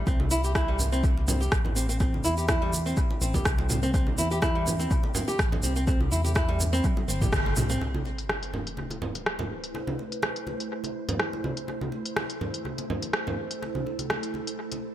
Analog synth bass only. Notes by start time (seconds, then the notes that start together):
0.07 C2
1.52 A1
2.24 E2
3.21 A1
3.45 C2
4.18 E2
5.39 A1
5.63 C2
6.12 E2
7.08 G1
7.57 C2